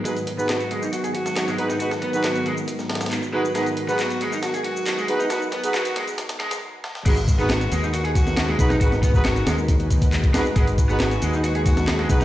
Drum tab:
CC |--------------------------------|--------------------------------|--------------------------------|--------------------------------|
HH |x-x-x---x-x-x---x-x-x---x---x---|x---x---x-x-x---x---xxxxx-------|x-x-x---x-x-x---x-x-x---x---x---|x---x-x-x-x-x-x-x-x-x-x---------|
SH |x-x---x-x-x---x-x-x---x-x-x---x-|x-x---x-x-x---x-x-x---x-x-x---x-|x-x---x-x-x---x-x-x---x-x-x---x-|x-x---x-x-x---x-x-x---x---------|
CP |--------x---------------x-------|--------x---------------x-------|--------x---------------x-------|--------x-----------------------|
SD |--------o-------------o-o-o---o-|--o-----o---------o-oooo--------|o-------o-------o-------o-------|o---o---o---o---o-o-o-o-----o-o-|
BD |o---o---------------o-------o---|o---o-o---------o---------o-----|--------------------------------|--------------------------------|

CC |x-------------------------------|--------------------------------|--------------------------------|
HH |x-x-x---x-x-x---x-x-x---x---x---|x---x---x-x-x---x-x-x-x-x-x-o---|x-x-x---x-x-x---x-x-x---x---x---|
SH |x-x-x-x-x-x-x-x-x---x-x-x---x-x-|x-x-x-x-x-x-x-x-x---x-x-x---x-x-|x-x-x-x-x-x-x-x-x---x-x-x---x-x-|
CP |--------x---------------x-------|--------x---------------x-------|--------x---------------x-------|
SD |--------o-------------o-o-o---o-|--o-----o---o---------------o---|--------o-------------o-o-o---o-|
BD |o---o---------------o-------o---|o---o-o---------o---o-o---o-----|o---o---------------o-------o---|